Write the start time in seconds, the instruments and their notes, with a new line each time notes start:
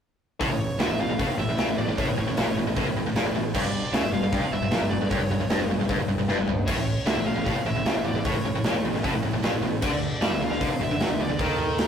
0.40 fingered electric bass A1, distorted electric guitar A2, lead electric guitar C#5, kick, open hi-hat
0.49 fingered electric bass A1, distorted electric guitar A2
0.78 fingered electric bass D2, distorted electric guitar D3, lead electric guitar E5, snare, open hi-hat
0.88 fingered electric bass A1, distorted electric guitar A2
0.98 fingered electric bass A1, distorted electric guitar A2, lead electric guitar F5
1.09 fingered electric bass A1, distorted electric guitar A2
1.19 fingered electric bass A1, distorted electric guitar A2, kick, open hi-hat
1.29 muted distorted electric guitar stroke, muted fingered electric bass stroke
1.38 fingered electric bass A1, distorted electric guitar A2, lead electric guitar E5
1.47 fingered electric bass A1, distorted electric guitar A2
1.58 fingered electric bass C#2, distorted electric guitar C#3, snare, open hi-hat
1.68 fingered electric bass A1, distorted electric guitar A2
1.78 fingered electric bass A1, distorted electric guitar A2, lead electric guitar D5
1.88 fingered electric bass A1, distorted electric guitar A2
1.98 fingered electric bass A1, distorted electric guitar A2, lead electric guitar C#5, kick, open hi-hat
2.09 fingered electric bass A1, distorted electric guitar A2
2.18 fingered electric bass A1, distorted electric guitar A2
2.27 fingered electric bass A1, distorted electric guitar A2
2.37 fingered electric bass A#1, distorted electric guitar A#2, snare, open hi-hat
2.47 fingered electric bass A1, distorted electric guitar A2
2.57 fingered electric bass A1, distorted electric guitar A2
2.67 fingered electric bass A1, distorted electric guitar A2
2.77 fingered electric bass A1, distorted electric guitar A2, kick, open hi-hat
2.86 fingered electric bass A1, distorted electric guitar A2
2.96 fingered electric bass A1, distorted electric guitar A2
3.05 fingered electric bass A1, distorted electric guitar A2
3.15 fingered electric bass A#1, distorted electric guitar A#2, snare, open hi-hat
3.24 fingered electric bass A1, distorted electric guitar A2
3.34 fingered electric bass A1, distorted electric guitar A2
3.54 fingered electric bass G1, distorted electric guitar G2, lead electric guitar D5, kick, crash
3.63 fingered electric bass G1, distorted electric guitar G2
3.92 fingered electric bass C#2, distorted electric guitar C#3, lead electric guitar E5, snare, open hi-hat
4.02 fingered electric bass G1, distorted electric guitar G2
4.12 fingered electric bass G1, distorted electric guitar G2, lead electric guitar F5
4.21 fingered electric bass G1, distorted electric guitar G2
4.32 fingered electric bass G1, distorted electric guitar G2, kick, open hi-hat
4.42 muted fingered electric bass stroke, muted distorted electric guitar stroke
4.51 fingered electric bass G1, distorted electric guitar G2, lead electric guitar E5
4.62 fingered electric bass G1, distorted electric guitar G2
4.71 fingered electric bass A#1, distorted electric guitar A#2, snare, open hi-hat
4.81 fingered electric bass G1, distorted electric guitar G2
4.89 fingered electric bass G1, distorted electric guitar G2, lead electric guitar D5
5.01 fingered electric bass G1, distorted electric guitar G2
5.11 fingered electric bass G1, distorted electric guitar G2, lead electric guitar C#5, kick, open hi-hat
5.21 fingered electric bass G1, distorted electric guitar G2
5.30 fingered electric bass G1, distorted electric guitar G2
5.40 fingered electric bass G1, distorted electric guitar G2
5.49 fingered electric bass G1, distorted electric guitar G2, snare, open hi-hat
5.58 fingered electric bass G1, distorted electric guitar G2
5.69 fingered electric bass G1, distorted electric guitar G2
5.79 fingered electric bass G1, distorted electric guitar G2, snare
5.89 fingered electric bass G1, distorted electric guitar G2, kick, open hi-hat
5.98 fingered electric bass G1, distorted electric guitar G2
6.07 fingered electric bass G1, distorted electric guitar G2
6.18 fingered electric bass G1, distorted electric guitar G2
6.28 fingered electric bass G1, distorted electric guitar G2, snare
6.38 fingered electric bass G1, distorted electric guitar G2
6.47 fingered electric bass G1, distorted electric guitar G2, floor tom
6.66 fingered electric bass A1, distorted electric guitar A2, lead electric guitar C#5, kick, open hi-hat, crash
6.77 fingered electric bass A1, distorted electric guitar A2
7.06 fingered electric bass D2, distorted electric guitar D3, lead electric guitar E5, snare, open hi-hat
7.17 fingered electric bass A1, distorted electric guitar A2
7.21 lead electric guitar E5
7.26 fingered electric bass A1, distorted electric guitar A2, lead electric guitar F5
7.36 fingered electric bass A1, distorted electric guitar A2
7.46 fingered electric bass A1, distorted electric guitar A2, kick, open hi-hat
7.56 muted fingered electric bass stroke, muted distorted electric guitar stroke
7.65 fingered electric bass A1, distorted electric guitar A2, lead electric guitar E5
7.76 fingered electric bass A1, distorted electric guitar A2
7.85 fingered electric bass C#2, distorted electric guitar C#3, snare, open hi-hat
7.95 fingered electric bass A1, distorted electric guitar A2
8.04 fingered electric bass A1, distorted electric guitar A2, lead electric guitar D5
8.14 fingered electric bass A1, distorted electric guitar A2
8.25 fingered electric bass A1, distorted electric guitar A2, lead electric guitar C#5, kick, open hi-hat
8.34 fingered electric bass A1, distorted electric guitar A2
8.44 fingered electric bass A1, distorted electric guitar A2
8.54 fingered electric bass A1, distorted electric guitar A2
8.63 fingered electric bass A#1, distorted electric guitar A#2, snare, open hi-hat
8.73 fingered electric bass A1, distorted electric guitar A2
8.83 fingered electric bass A1, distorted electric guitar A2
8.93 fingered electric bass A1, distorted electric guitar A2, snare
9.04 fingered electric bass A1, distorted electric guitar A2, kick, open hi-hat
9.14 fingered electric bass A1, distorted electric guitar A2
9.23 fingered electric bass A1, distorted electric guitar A2
9.34 fingered electric bass A1, distorted electric guitar A2
9.43 fingered electric bass A#1, distorted electric guitar A#2, snare, open hi-hat
9.53 fingered electric bass A1, distorted electric guitar A2
9.61 fingered electric bass A1, distorted electric guitar A2
9.82 fingered electric bass D2, distorted electric guitar D3, lead electric guitar D5, kick, crash
9.90 fingered electric bass D2, distorted electric guitar D3
10.21 fingered electric bass G2, distorted electric guitar G3, lead electric guitar E5, snare, open hi-hat
10.31 fingered electric bass D2, distorted electric guitar D3
10.40 fingered electric bass D2, distorted electric guitar D3, lead electric guitar F5
10.51 fingered electric bass D2, distorted electric guitar D3, snare
10.61 fingered electric bass D2, distorted electric guitar D3, kick, open hi-hat
10.70 muted distorted electric guitar stroke, muted fingered electric bass stroke
10.80 fingered electric bass D2, distorted electric guitar D3, lead electric guitar E5
10.89 fingered electric bass D2, distorted electric guitar D3
10.98 fingered electric bass F#2, distorted electric guitar F#3, snare, open hi-hat
11.08 fingered electric bass D2, distorted electric guitar D3
11.18 fingered electric bass D2, distorted electric guitar D3, lead electric guitar D5
11.28 fingered electric bass D2, distorted electric guitar D3
11.39 fingered electric bass D#2, distorted electric guitar D#3, kick, open hi-hat
11.43 lead electric guitar A4
11.78 snare, open hi-hat